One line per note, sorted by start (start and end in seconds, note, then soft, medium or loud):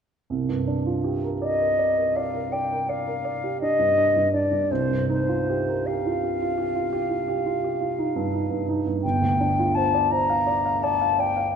0.30 4.66 C2 soft
0.49 0.79 G2 soft
0.67 0.98 D4 soft
0.86 1.16 F4 soft
1.04 1.34 G4 soft
1.24 1.53 A#4 soft
1.42 1.71 D5 soft
1.42 2.17 D#5 soft
1.60 1.90 A#4 soft
1.78 2.08 D5 soft
1.97 2.27 A#4 soft
2.16 2.45 D5 soft
2.16 2.54 F5 soft
2.34 2.63 A#4 soft
2.52 2.82 D5 soft
2.52 2.91 G5 soft
2.72 3.00 A#4 soft
2.89 3.18 D5 soft
2.89 3.61 F5 soft
3.06 3.36 A#4 soft
3.24 3.54 D5 soft
3.44 3.72 G4 soft
3.61 3.90 D4 soft
3.61 4.32 D#5 soft
3.79 4.08 G2 soft
3.97 4.26 D4 soft
4.16 4.45 G2 soft
4.33 4.63 D4 soft
4.33 4.73 D5 soft
4.51 4.70 G2 soft
4.71 9.00 C2 soft
4.71 5.09 C5 soft
4.90 5.20 G2 soft
5.09 5.40 D#4 soft
5.09 5.88 C5 soft
5.29 5.60 F4 soft
5.49 5.79 G4 soft
5.69 5.98 A#4 soft
5.86 6.16 G4 soft
5.86 8.68 F5 soft
6.06 6.34 F4 soft
6.24 6.51 G4 soft
6.41 6.68 F4 soft
6.58 6.85 G4 soft
6.75 7.03 F4 soft
6.93 7.21 G4 soft
7.11 7.38 F4 soft
7.28 7.56 G4 soft
7.46 7.74 F4 soft
7.64 7.91 G4 soft
7.81 8.08 F4 soft
7.98 8.26 D#4 soft
8.16 8.43 G2 soft
8.33 8.61 D#4 soft
8.50 8.78 G2 soft
8.68 8.97 D#4 soft
8.86 9.04 G2 soft
9.03 11.56 G1 soft
9.03 9.76 G5 medium
9.21 9.51 D2 soft
9.40 9.69 D4 soft
9.59 9.87 F4 soft
9.75 10.05 C5 soft
9.75 10.13 A5 medium
9.94 10.22 D5 soft
10.11 10.40 C5 soft
10.11 10.85 A#5 medium
10.30 10.58 F5 soft
10.47 10.76 D5 soft
10.65 10.94 F5 soft
10.83 11.13 D5 soft
10.83 11.21 A5 medium
11.01 11.31 F5 soft
11.19 11.49 D5 soft
11.19 11.56 G5 medium
11.37 11.56 F5 soft